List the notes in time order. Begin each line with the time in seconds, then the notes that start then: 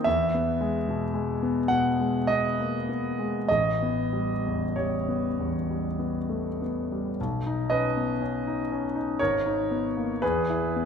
0.04 E2 E5
0.34 B3
0.61 G#3
0.88 B2
1.14 G#3
1.43 B3
1.68 B2 F#5
2.00 G#3
2.27 B3 D#5
2.60 A#3
2.89 B3
3.19 G#3
3.48 A1 D#5
3.82 B3
4.13 G3
4.47 E2
4.76 G3 C#5
5.08 B3
5.39 E2
5.70 G3
5.99 B3
6.29 A3
6.62 B3
6.92 G3
7.21 B1
7.46 D#4
7.70 C#4 B4 D#5
7.97 B3
8.22 C#4
8.47 D#4
8.72 C#4
8.96 D#4
9.19 G#1 A#4 C#5
9.47 D#4
9.71 B3
9.97 A#3
10.22 E2 G#4 B4
10.50 E4
10.76 B3